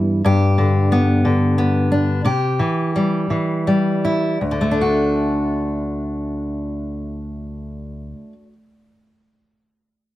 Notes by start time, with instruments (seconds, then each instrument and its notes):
Already playing: fingered electric bass G2, steel-string acoustic guitar E3 E4
0.24 steel-string acoustic guitar G2 G4
0.58 steel-string acoustic guitar D3
0.92 steel-string acoustic guitar B3
1.25 steel-string acoustic guitar D3
1.58 steel-string acoustic guitar B3
1.92 steel-string acoustic guitar D4
2.25 steel-string acoustic guitar C3 G4
2.59 steel-string acoustic guitar E3
2.96 steel-string acoustic guitar G3
3.30 steel-string acoustic guitar E3
3.67 steel-string acoustic guitar G3
4.05 steel-string acoustic guitar E4
4.41 steel-string acoustic guitar D2
4.51 steel-string acoustic guitar D3
4.61 steel-string acoustic guitar A3
4.71 steel-string acoustic guitar D4
4.81 steel-string acoustic guitar F#4